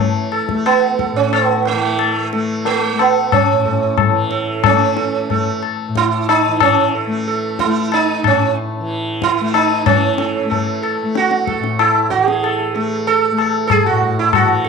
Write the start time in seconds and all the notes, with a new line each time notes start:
Already playing: A2 E3 A3 C#4
0.32 A4, tabla na
0.49 A3, tabla ke
0.66 B3, tabla na
0.99 A4, tabla ke
1.13 A2 C#4
1.33 B3, tabla na
1.66 A3, tabla te
1.73 E3
1.99 tabla na
2.33 A3 A4, tabla te
2.65 A3, tabla tin
2.93 A3
2.99 B3, tabla na
3.32 C#4, tabla na, tabla ge
3.52 A2
3.65 A4, tabla ge
3.98 tabla na, tabla ge
4.10 E3
4.31 A4, tabla te
4.64 C#4, tabla na, tabla ge
4.69 A3
4.97 A4, tabla te
5.29 A3 A4, tabla tin, tabla ge
5.63 tabla na
5.88 A2
5.95 E4, tabla ke
6.29 D#4, tabla na
6.48 E3
6.60 C#4, tabla na, tabla ge
6.95 A4
7.07 A3
7.28 A4
7.59 E4, tabla ke
7.66 A3
7.92 D#4, tabla na
8.22 A2, tabla na, tabla ge
8.27 C#4
8.81 E3
9.22 E4, tabla ke
9.40 A3
9.54 D#4, tabla na
9.86 E3 C#4, tabla na, tabla ge
10.18 A4, tabla te
10.44 A3
10.50 A4, tabla tin, tabla ge
10.83 A4, tabla na
11.03 A3
11.15 F#4, tabla te
11.31 tabla te
11.47 A4, tabla ke
11.60 A2, tabla te
11.79 E4, tabla na
12.10 F#4, tabla ke
12.17 E3
12.28 G#4, tabla te
12.43 A4, tabla na
12.74 A3 A4, tabla te
13.07 A4, tabla tin
13.31 A3
13.38 A4, tabla na
13.67 G#4 A4, tabla na, tabla ge
13.86 A2 F#4
14.02 tabla ge
14.19 E4
14.33 F#4, tabla na, tabla ge
14.45 E3
14.65 A4, tabla te